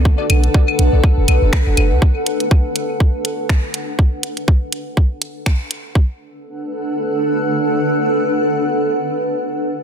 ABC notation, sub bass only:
X:1
M:4/4
L:1/16
Q:"Swing 16ths" 1/4=122
K:Bm
V:1 name="Sub bass" clef=bass
z2 B,,, z3 B,,, B,,, z F,,, B,,, F,,, z F,,, F,,, D,, | z16 | z16 | z16 |
z16 |]